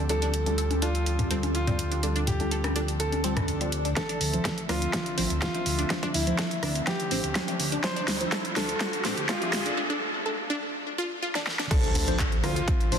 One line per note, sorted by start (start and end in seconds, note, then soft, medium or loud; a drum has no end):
0.00 3.94 D2 medium
0.00 3.93 D3 medium
0.00 3.93 F3 medium
0.00 3.93 C4 medium
0.00 3.93 G4 medium
0.00 3.93 A4 medium
0.09 0.43 G3 medium
0.09 0.13 D4 medium
0.09 0.43 F4 medium
0.09 0.43 A4 medium
0.09 0.73 A4 loud
0.09 closed hi-hat medium
0.22 0.30 D4 loud
0.22 closed hi-hat soft
0.34 closed hi-hat medium
0.46 0.79 G3 medium
0.46 0.79 F4 medium
0.46 0.79 A4 loud
0.46 closed hi-hat soft
0.46 high conga medium
0.58 0.64 A4 medium
0.58 closed hi-hat medium
0.71 closed hi-hat soft
0.71 high conga medium
0.82 0.89 G3 medium
0.82 0.91 D4 loud
0.82 0.89 F4 medium
0.82 1.46 F4 medium
0.82 0.89 A4 medium
0.82 closed hi-hat medium
0.95 closed hi-hat soft
1.06 closed hi-hat medium
1.19 closed hi-hat soft
1.19 mid tom medium
1.19 high conga medium
1.31 1.41 G3 medium
1.31 1.39 C4 loud
1.31 1.41 F4 medium
1.31 1.41 A4 loud
1.31 closed hi-hat medium
1.43 closed hi-hat soft
1.43 high conga medium
1.55 2.18 F4 medium
1.55 closed hi-hat medium
1.67 1.77 G3 medium
1.67 1.73 C4 medium
1.67 1.77 F4 medium
1.67 1.77 D5 medium
1.67 closed hi-hat soft
1.67 mid tom medium
1.79 closed hi-hat medium
1.92 1.99 D4 medium
1.92 closed hi-hat soft
2.03 2.37 G3 medium
2.03 2.07 D4 medium
2.03 2.37 F4 medium
2.03 2.37 A4 loud
2.03 closed hi-hat medium
2.16 2.24 D4 loud
2.16 closed hi-hat soft
2.27 2.91 G4 medium
2.27 closed hi-hat medium
2.27 mid tom medium
2.40 2.73 G3 medium
2.40 2.73 F4 medium
2.40 2.73 A4 loud
2.40 closed hi-hat soft
2.40 high conga medium
2.51 2.57 A4 medium
2.51 closed hi-hat medium
2.64 cross-stick medium
2.64 closed hi-hat soft
2.64 high conga loud
2.76 2.82 G3 medium
2.76 2.84 D4 loud
2.76 2.82 F4 medium
2.76 2.82 A4 medium
2.76 closed hi-hat loud
2.88 closed hi-hat soft
3.00 3.87 A4 medium
3.00 closed hi-hat medium
3.00 swell medium
3.12 closed hi-hat soft
3.12 high conga medium
3.24 3.34 G3 medium
3.24 3.33 C4 loud
3.24 3.34 F4 medium
3.24 3.34 A4 loud
3.24 closed hi-hat medium
3.37 cross-stick medium
3.37 closed hi-hat soft
3.37 mid tom medium
3.37 high conga loud
3.48 closed hi-hat medium
3.61 3.70 G3 medium
3.61 3.66 C4 medium
3.61 3.70 F4 medium
3.61 3.70 D5 medium
3.61 closed hi-hat soft
3.72 closed hi-hat medium
3.85 3.93 D4 medium
3.85 closed hi-hat soft
3.96 9.73 D3 medium
3.96 9.73 F3 loud
3.96 4.30 F3 medium
3.96 9.73 A3 medium
3.96 9.73 C4 medium
3.96 4.00 D4 medium
3.96 4.30 D4 medium
3.96 4.60 A4 loud
3.96 4.30 C5 medium
3.96 7.80 E5 medium
3.96 kick loud
3.96 snare soft
3.96 closed hi-hat medium
3.96 riser medium
4.09 4.17 D4 loud
4.09 closed hi-hat soft
4.21 4.39 D2 medium
4.21 open hi-hat loud
4.33 4.66 F3 medium
4.33 4.66 D4 medium
4.33 4.66 C5 loud
4.33 closed hi-hat soft
4.45 4.51 A4 medium
4.45 kick loud
4.45 snare soft
4.45 closed hi-hat medium
4.58 closed hi-hat soft
4.69 4.88 D2 loud
4.69 4.76 F3 medium
4.69 4.78 D4 loud
4.69 4.76 D4 medium
4.69 5.33 F4 medium
4.69 4.76 C5 medium
4.69 cross-stick medium
4.69 open hi-hat loud
4.82 closed hi-hat soft
4.93 kick loud
4.93 snare medium
4.93 closed hi-hat medium
5.06 closed hi-hat soft
5.18 5.27 A1 loud
5.18 5.28 F3 loud
5.18 5.26 C4 loud
5.18 5.28 D4 medium
5.18 5.28 C5 loud
5.18 open hi-hat loud
5.30 5.48 D2 medium
5.30 closed hi-hat soft
5.42 6.05 F4 medium
5.42 kick loud
5.42 snare medium
5.42 closed hi-hat medium
5.54 5.64 F3 medium
5.54 5.60 C4 medium
5.54 5.64 D4 medium
5.54 5.64 E5 medium
5.54 closed hi-hat soft
5.66 5.84 D2 medium
5.66 open hi-hat loud
5.79 5.86 D4 medium
5.79 closed hi-hat soft
5.90 6.24 F3 medium
5.90 5.94 D4 medium
5.90 6.24 D4 medium
5.90 6.24 C5 loud
5.90 kick loud
5.90 snare medium
5.90 closed hi-hat medium
6.03 6.11 D4 loud
6.03 kick medium
6.03 closed hi-hat soft
6.14 6.33 D2 loud
6.14 6.78 E4 medium
6.14 open hi-hat loud
6.27 6.60 F3 medium
6.27 6.60 D4 medium
6.27 6.60 C5 loud
6.27 closed hi-hat soft
6.39 6.44 A4 medium
6.39 kick loud
6.39 snare medium
6.39 closed hi-hat medium
6.51 closed hi-hat soft
6.63 6.81 D2 loud
6.63 6.69 F3 medium
6.63 6.71 D4 loud
6.63 6.69 D4 medium
6.63 6.69 C5 medium
6.63 cross-stick medium
6.63 open hi-hat loud
6.75 closed hi-hat soft
6.87 7.75 G4 medium
6.87 kick loud
6.87 snare medium
6.87 closed hi-hat medium
7.00 closed hi-hat soft
7.11 7.21 A1 loud
7.11 7.22 F3 loud
7.11 7.20 C4 loud
7.11 7.22 D4 medium
7.11 7.22 C5 loud
7.11 open hi-hat loud
7.24 7.42 D2 medium
7.24 closed hi-hat soft
7.35 kick loud
7.35 snare medium
7.35 closed hi-hat medium
7.48 7.57 F3 medium
7.48 7.53 C4 medium
7.48 7.57 D4 medium
7.48 7.57 E5 medium
7.48 closed hi-hat soft
7.60 7.78 D2 medium
7.60 open hi-hat loud
7.72 7.80 D4 medium
7.72 closed hi-hat soft
7.84 8.18 F3 medium
7.84 7.87 D4 medium
7.84 9.75 D4 medium
7.84 8.18 D4 medium
7.84 8.47 C5 loud
7.84 8.18 C5 loud
7.84 kick loud
7.84 snare medium
7.84 closed hi-hat medium
7.96 8.04 D4 loud
7.96 closed hi-hat soft
8.08 8.26 D2 loud
8.08 snare medium
8.08 open hi-hat loud
8.21 8.54 F3 medium
8.21 8.54 D4 medium
8.21 8.54 C5 loud
8.21 closed hi-hat soft
8.32 8.38 A4 medium
8.32 kick loud
8.32 snare medium
8.32 closed hi-hat medium
8.45 closed hi-hat soft
8.56 8.75 D2 loud
8.56 8.63 F3 medium
8.56 8.65 D4 loud
8.56 8.63 D4 medium
8.56 9.20 A4 medium
8.56 8.63 C5 medium
8.56 snare medium
8.56 open hi-hat loud
8.69 closed hi-hat soft
8.80 kick loud
8.80 snare medium
8.80 closed hi-hat medium
8.93 closed hi-hat soft
9.05 9.14 A1 loud
9.05 9.15 F3 loud
9.05 9.13 C4 loud
9.05 9.15 D4 medium
9.05 9.15 C5 loud
9.05 snare medium
9.05 open hi-hat loud
9.17 9.35 D2 medium
9.17 closed hi-hat soft
9.29 9.77 F4 medium
9.29 kick loud
9.29 snare medium
9.29 closed hi-hat medium
9.42 9.51 F3 medium
9.42 9.47 C4 medium
9.42 9.51 D4 medium
9.42 9.51 E5 medium
9.42 closed hi-hat soft
9.53 9.71 D2 medium
9.53 snare medium
9.53 open hi-hat loud
9.66 9.74 D4 medium
9.66 closed hi-hat soft
9.77 9.81 D4 medium
9.90 9.98 D4 loud
10.26 10.31 A4 medium
10.50 10.58 D4 loud
10.98 11.04 F4 loud
11.22 11.28 F4 medium
11.35 11.40 D4 loud
11.35 snare medium
11.47 snare medium
11.59 11.62 D4 loud
11.59 snare medium
11.71 12.99 D3 medium
11.71 12.05 F3 medium
11.71 12.99 F3 loud
11.71 12.99 A3 medium
11.71 12.99 C4 medium
11.71 11.77 D4 medium
11.71 12.05 D4 medium
11.71 12.34 A4 loud
11.71 12.05 C5 loud
11.71 12.99 E5 medium
11.71 kick loud
11.71 closed hi-hat medium
11.71 crash loud
11.71 impact medium
11.84 closed hi-hat soft
11.95 12.13 D2 loud
11.95 open hi-hat loud
12.08 12.41 F3 loud
12.08 12.41 D4 medium
12.08 12.41 C5 loud
12.08 closed hi-hat soft
12.19 12.23 D4 medium
12.19 kick loud
12.19 clap loud
12.19 closed hi-hat medium
12.32 closed hi-hat soft
12.43 12.62 D2 loud
12.43 12.50 F3 medium
12.43 12.47 C4 medium
12.43 12.50 D4 medium
12.43 12.99 F4 medium
12.43 12.50 C5 medium
12.43 cross-stick medium
12.43 open hi-hat loud
12.56 12.64 F4 medium
12.56 closed hi-hat soft
12.68 12.73 C4 medium
12.68 kick loud
12.68 closed hi-hat medium
12.81 closed hi-hat soft
12.92 12.99 A1 loud
12.92 12.99 F3 medium
12.92 12.99 D4 medium
12.92 12.95 D4 medium
12.92 12.99 C5 loud
12.92 open hi-hat loud